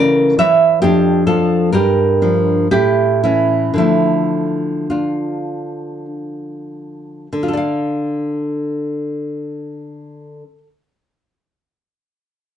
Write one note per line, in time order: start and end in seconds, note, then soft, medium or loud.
0.00 0.38 C#3 soft
0.00 0.37 E3 soft
0.00 0.36 A3 medium
0.00 0.34 A#4 medium
0.00 0.35 D5 loud
0.38 0.82 E3 soft
0.38 0.79 C#5 medium
0.38 0.80 E5 medium
0.82 1.70 F2 medium
0.82 1.24 D4 medium
0.82 1.24 G4 medium
1.27 1.69 F3 soft
1.27 1.68 D4 soft
1.27 1.70 F4 soft
1.27 1.70 A4 medium
1.72 2.67 G2 medium
1.72 2.66 G4 medium
1.72 2.66 A#4 medium
2.22 2.66 F3 soft
2.22 2.66 D4 soft
2.71 3.73 A2 medium
2.71 3.19 E4 medium
2.71 3.20 G4 medium
3.24 3.74 E3 soft
3.24 3.74 C#4 soft
3.24 3.75 E4 medium
3.74 7.26 D3 soft
3.74 7.27 F3 soft
3.78 4.86 A3 soft
3.78 4.85 E4 medium
4.90 6.06 D4 soft
4.90 6.05 F4 soft
7.33 10.42 D3 medium
7.43 7.57 F4 soft
7.48 10.58 A4 soft
7.53 10.63 D5 soft
7.53 10.67 F5 soft